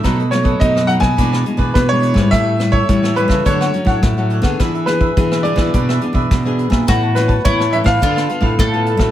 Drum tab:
HH |xxxxxxx-x-xxxxx-|x-xxx-x-xxx-xxx-|xxxxxxx-x-xxxxx-|x-xxx-x-xxx-xxxx|
SD |r-r--r-r-r--r--r|r-r--r-r-r--r--r|r-r--r-r-r--r--r|r-r--r-r-r--r--r|
BD |o--oo--oo--oo--o|o--oo--oo--oo--o|o--oo--oo--oo--o|o--oo--oo--oo--o|